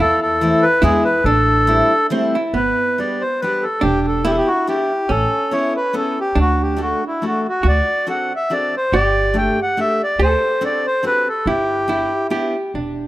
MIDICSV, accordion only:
0, 0, Header, 1, 2, 480
1, 0, Start_track
1, 0, Key_signature, 1, "major"
1, 0, Tempo, 426136
1, 1401, Time_signature, 3, 2, 24, 8
1, 9584, Tempo, 420757
1, 13424, Tempo, 438276
1, 14738, End_track
2, 0, Start_track
2, 0, Title_t, "Accordion"
2, 0, Program_c, 0, 21
2, 7, Note_on_c, 0, 69, 103
2, 226, Note_off_c, 0, 69, 0
2, 243, Note_on_c, 0, 69, 83
2, 705, Note_on_c, 0, 71, 99
2, 727, Note_off_c, 0, 69, 0
2, 929, Note_off_c, 0, 71, 0
2, 933, Note_on_c, 0, 68, 90
2, 1171, Note_off_c, 0, 68, 0
2, 1177, Note_on_c, 0, 71, 76
2, 1404, Note_off_c, 0, 71, 0
2, 1405, Note_on_c, 0, 69, 95
2, 2329, Note_off_c, 0, 69, 0
2, 2877, Note_on_c, 0, 71, 83
2, 3371, Note_on_c, 0, 74, 65
2, 3372, Note_off_c, 0, 71, 0
2, 3613, Note_on_c, 0, 72, 73
2, 3634, Note_off_c, 0, 74, 0
2, 3838, Note_off_c, 0, 72, 0
2, 3840, Note_on_c, 0, 71, 78
2, 4082, Note_on_c, 0, 69, 67
2, 4106, Note_off_c, 0, 71, 0
2, 4303, Note_on_c, 0, 67, 90
2, 4311, Note_off_c, 0, 69, 0
2, 4576, Note_off_c, 0, 67, 0
2, 4592, Note_on_c, 0, 69, 70
2, 4792, Note_on_c, 0, 67, 84
2, 4804, Note_off_c, 0, 69, 0
2, 4843, Note_on_c, 0, 69, 60
2, 4857, Note_off_c, 0, 67, 0
2, 4913, Note_off_c, 0, 69, 0
2, 4926, Note_on_c, 0, 67, 91
2, 5038, Note_on_c, 0, 66, 88
2, 5056, Note_off_c, 0, 67, 0
2, 5265, Note_off_c, 0, 66, 0
2, 5276, Note_on_c, 0, 67, 80
2, 5743, Note_on_c, 0, 69, 99
2, 5756, Note_off_c, 0, 67, 0
2, 6223, Note_on_c, 0, 73, 80
2, 6228, Note_off_c, 0, 69, 0
2, 6461, Note_off_c, 0, 73, 0
2, 6490, Note_on_c, 0, 71, 82
2, 6704, Note_off_c, 0, 71, 0
2, 6727, Note_on_c, 0, 69, 85
2, 6977, Note_off_c, 0, 69, 0
2, 6989, Note_on_c, 0, 67, 82
2, 7192, Note_off_c, 0, 67, 0
2, 7213, Note_on_c, 0, 66, 85
2, 7460, Note_off_c, 0, 66, 0
2, 7463, Note_on_c, 0, 67, 64
2, 7670, Note_off_c, 0, 67, 0
2, 7679, Note_on_c, 0, 66, 76
2, 7934, Note_off_c, 0, 66, 0
2, 7969, Note_on_c, 0, 64, 66
2, 8165, Note_off_c, 0, 64, 0
2, 8185, Note_on_c, 0, 66, 73
2, 8412, Note_off_c, 0, 66, 0
2, 8429, Note_on_c, 0, 66, 71
2, 8639, Note_off_c, 0, 66, 0
2, 8651, Note_on_c, 0, 74, 94
2, 9085, Note_off_c, 0, 74, 0
2, 9121, Note_on_c, 0, 78, 77
2, 9383, Note_off_c, 0, 78, 0
2, 9415, Note_on_c, 0, 76, 84
2, 9600, Note_on_c, 0, 74, 90
2, 9614, Note_off_c, 0, 76, 0
2, 9865, Note_off_c, 0, 74, 0
2, 9879, Note_on_c, 0, 72, 83
2, 10077, Note_on_c, 0, 74, 100
2, 10087, Note_off_c, 0, 72, 0
2, 10566, Note_off_c, 0, 74, 0
2, 10572, Note_on_c, 0, 79, 89
2, 10829, Note_off_c, 0, 79, 0
2, 10857, Note_on_c, 0, 78, 88
2, 11055, Note_off_c, 0, 78, 0
2, 11055, Note_on_c, 0, 76, 96
2, 11309, Note_off_c, 0, 76, 0
2, 11324, Note_on_c, 0, 74, 90
2, 11527, Note_off_c, 0, 74, 0
2, 11539, Note_on_c, 0, 72, 88
2, 12011, Note_off_c, 0, 72, 0
2, 12028, Note_on_c, 0, 74, 88
2, 12271, Note_on_c, 0, 72, 90
2, 12272, Note_off_c, 0, 74, 0
2, 12479, Note_off_c, 0, 72, 0
2, 12497, Note_on_c, 0, 71, 98
2, 12748, Note_off_c, 0, 71, 0
2, 12749, Note_on_c, 0, 69, 72
2, 12959, Note_off_c, 0, 69, 0
2, 12963, Note_on_c, 0, 67, 89
2, 13861, Note_off_c, 0, 67, 0
2, 14738, End_track
0, 0, End_of_file